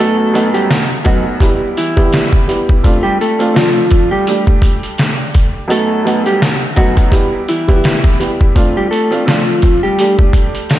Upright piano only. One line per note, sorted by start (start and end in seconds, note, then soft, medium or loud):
0.00 0.31 F#2 medium
0.00 0.31 A3 medium
0.00 0.31 B3 medium
0.00 0.31 D#4 medium
0.00 0.32 F#4 medium
0.33 0.85 F#2 loud
0.33 0.85 A3 medium
0.33 0.85 B3 medium
0.33 0.86 D#4 medium
0.33 0.86 F#4 loud
1.04 1.41 F#2 medium
1.04 1.41 A3 medium
1.04 1.40 B3 medium
1.04 1.42 D#4 medium
1.04 1.42 F#4 loud
1.41 1.92 G3 medium
1.41 1.92 B3 medium
1.41 1.93 E4 medium
1.41 1.93 G4 loud
1.96 2.44 G3 medium
1.96 2.45 B3 medium
1.96 2.45 E4 medium
1.96 2.45 G4 loud
2.48 2.82 G3 medium
2.48 2.82 B3 medium
2.48 2.82 E4 medium
2.48 2.82 G4 medium
2.84 3.35 A3 medium
2.84 3.35 C4 medium
2.84 3.36 D4 medium
2.84 3.36 F4 medium
3.39 3.52 A3 loud
3.39 3.53 C4 medium
3.39 3.54 D4 medium
3.39 3.54 F4 loud
3.54 4.26 A3 loud
3.54 4.27 C4 medium
3.54 4.27 D4 medium
3.54 4.27 F4 medium
4.28 5.61 G3 medium
4.28 5.61 A3 medium
4.28 5.61 D4 medium
4.28 5.61 G4 loud
5.68 6.02 F#2 medium
5.68 6.02 A3 medium
5.68 6.03 B3 medium
5.68 6.03 D#4 medium
5.68 6.03 F#4 loud
6.05 6.57 F#2 medium
6.05 6.57 A3 medium
6.05 6.57 B3 medium
6.05 6.57 D#4 medium
6.05 6.57 F#4 loud
6.76 7.12 F#2 medium
6.76 7.13 A3 medium
6.76 7.11 B3 medium
6.76 7.13 D#4 medium
6.76 7.13 F#4 loud
7.12 7.64 G3 medium
7.12 7.64 B3 medium
7.12 7.64 E4 medium
7.12 7.64 G4 loud
7.68 8.16 G3 medium
7.68 8.16 B3 medium
7.68 8.16 E4 medium
7.68 8.17 G4 loud
8.19 8.53 G3 medium
8.19 8.53 B3 medium
8.19 8.54 E4 medium
8.19 8.54 G4 medium
8.55 9.07 A3 medium
8.55 9.07 C4 medium
8.55 9.07 D4 medium
8.55 9.07 F4 medium
9.10 9.24 A3 medium
9.10 9.25 C4 medium
9.10 9.25 D4 medium
9.10 9.26 F4 loud
9.25 9.98 A3 medium
9.25 9.98 C4 medium
9.25 9.98 D4 medium
9.25 9.99 F4 medium
10.00 10.79 G3 medium
10.00 10.79 A3 medium
10.00 10.79 D4 medium
10.00 10.79 G4 loud